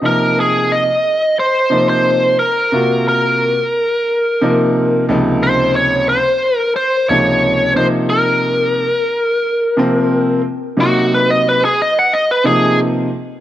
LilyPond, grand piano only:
\new Staff \with { instrumentName = "Grand piano" } { \clef bass \time 4/4 \key aes \mixolydian \tempo 4 = 89 <c f bes ees'>4 r4. <c f bes ees'>4 r8 | <c bes f' ges'>4 r4. <c f bes ees'>4 <des, c f bes ees'>8~ | <des, c f bes ees'>4 r4. <des, c f bes ees'>4 <c f bes ees'>8~ | <c f bes ees'>4 r4. <c f bes c'>4 r8 |
<c ges bes ees'>4 r4. <c f bes ees'>4 r8 | }